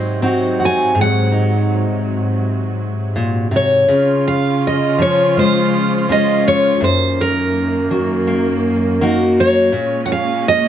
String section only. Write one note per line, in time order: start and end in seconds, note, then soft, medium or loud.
0.00 3.84 G#2 medium
0.00 3.85 C3 medium
0.00 3.85 F#3 medium
3.89 6.79 C#3 medium
3.89 6.79 C#4 medium
3.89 6.79 F4 medium
6.82 9.71 F#2 medium
6.82 9.71 D#3 medium
6.82 9.71 A#3 medium
9.72 10.68 A#2 medium
9.72 10.68 G#3 medium
9.72 10.68 C#4 medium